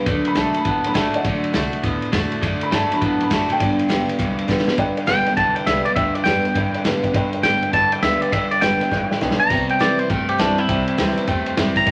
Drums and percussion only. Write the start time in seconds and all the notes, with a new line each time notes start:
0.06 kick, snare, ride
0.25 ride
0.35 snare, ride
0.54 ride
0.65 kick, ride
0.84 ride
0.95 kick, snare, ride
1.14 ride
1.25 kick, snare, ride
1.44 ride
1.54 snare, ride
1.73 ride
1.83 kick, snare, ride
2.02 ride
2.13 kick, snare, ride
2.32 ride
2.43 kick, ride
2.61 ride
2.72 snare, ride
2.92 snare, ride
3.02 kick, ride
3.21 ride
3.31 kick, snare, ride
3.50 ride
3.60 kick, snare, ride
3.79 ride
3.90 snare, ride
4.09 ride
4.19 kick, snare, ride
4.39 ride
4.49 kick, snare
4.58 snare
4.68 snare
4.78 kick, ride
4.97 ride
5.07 snare, ride
5.26 snare, ride
5.37 kick, ride
5.56 ride
5.67 snare, ride
5.86 ride
5.96 kick, ride
6.15 ride
6.26 snare, ride
6.45 ride
6.55 kick, ride
6.74 ride
6.85 snare, ride
7.04 kick, ride
7.14 kick, ride
7.33 ride
7.43 snare, ride
7.63 ride
7.73 kick, ride
7.92 ride
8.03 snare, ride
8.22 ride
8.32 kick, ride
8.51 ride
8.62 snare, ride
8.81 snare, ride
8.92 kick, snare
9.11 snare
9.21 snare
9.31 snare
9.50 kick, ride, splash
9.69 ride
9.81 snare, ride
9.99 ride
10.10 kick, ride
10.29 ride
10.39 snare, ride
10.58 ride
10.69 kick, ride
10.88 ride
10.98 snare, ride
11.17 snare, ride
11.27 kick, ride
11.46 ride
11.57 snare, ride
11.76 kick, ride
11.86 kick, ride